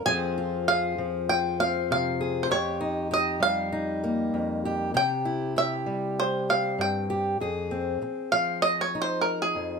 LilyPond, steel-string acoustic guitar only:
\new Staff \with { instrumentName = "Steel-string acoustic guitar" } { \time 4/4 \key f \minor \tempo 4 = 98 << { <f c' f' aes'>8 f'8 aes'4 f'8 c'4 aes'8 | g'8 ees'8 g'4 ees'8 bes4 g'8 | g'8 e'8 g'4. c'4 g'8 | aes'8 c'2 ees'4. | } \\ { f,4. f4. c4 | f,4. g4. f,4 | c4. g4. g,4 | f,4 r8 f2 f,8 | } >> }